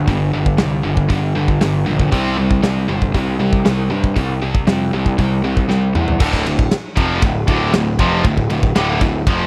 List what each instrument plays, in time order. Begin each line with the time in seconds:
0.07 picked electric bass G1, distorted electric guitar G2 D3, kick, open hi-hat
0.33 picked electric bass G1, distorted electric guitar G2 D3
0.46 kick
0.58 picked electric bass C2, distorted electric guitar G2 D3, snare, open hi-hat
0.84 picked electric bass G1, distorted electric guitar G2 D3
0.97 kick
1.09 picked electric bass G1, distorted electric guitar G2 D3, kick, open hi-hat
1.35 picked electric bass G1, distorted electric guitar G2 D3
1.48 kick
1.61 picked electric bass G1, distorted electric guitar G2 D3, snare, open hi-hat
1.86 picked electric bass A#1, distorted electric guitar G2 D3
2.00 kick
2.12 picked electric bass C2, distorted electric guitar C3 G3 C4, kick, open hi-hat
2.37 picked electric bass C2, distorted electric guitar C3 G3
2.51 kick
2.63 picked electric bass C2, distorted electric guitar C3 G3, snare, open hi-hat
2.88 picked electric bass G1, distorted electric guitar C3 G3
3.02 kick
3.14 picked electric bass C2, distorted electric guitar C3 G3, kick, open hi-hat
3.39 picked electric bass C2, distorted electric guitar C3 G3
3.53 kick
3.65 picked electric bass C2, distorted electric guitar C3 G3, snare, open hi-hat
3.90 picked electric bass G2, distorted electric guitar C3 G3
4.04 kick
4.16 picked electric bass C2, distorted electric guitar C3 G3, kick, open hi-hat
4.42 picked electric bass C2, distorted electric guitar C3 G3
4.55 kick
4.67 picked electric bass F2, distorted electric guitar C3 G3, snare, open hi-hat
4.93 picked electric bass C2, distorted electric guitar C3 G3
5.06 kick
5.18 picked electric bass C2, distorted electric guitar C3 G3, kick, open hi-hat
5.43 picked electric bass C2, distorted electric guitar C3 G3
5.57 kick
5.68 picked electric bass C2, distorted electric guitar C3 G3, snare
5.95 picked electric bass E2, distorted electric guitar C3 G3, mid tom
6.08 floor tom
6.20 picked electric bass D1, distorted electric guitar D2 A2 D3, kick, crash
6.33 kick
6.46 picked electric bass D1, distorted electric guitar D2 A2, ride
6.59 kick
6.71 snare, ride
6.96 picked electric bass F1, distorted electric guitar F2 C3 F3, kick, ride
7.22 picked electric bass D1, distorted electric guitar D2 A2, kick, ride
7.48 picked electric bass D1, distorted electric guitar D2 A2 D3, kick, ride
7.73 picked electric bass D1, distorted electric guitar D2 A2, snare, ride
7.99 picked electric bass F1, distorted electric guitar F2 C3 F3, kick, ride
8.24 picked electric bass D1, distorted electric guitar D2 A2, kick, ride
8.37 kick
8.50 picked electric bass D1, distorted electric guitar D2 A2, ride
8.63 kick
8.76 picked electric bass D1, distorted electric guitar D2 A2 D3, snare, ride
9.01 picked electric bass D1, distorted electric guitar D2 A2, kick, ride
9.27 picked electric bass F1, distorted electric guitar F2 C3 F3, kick, ride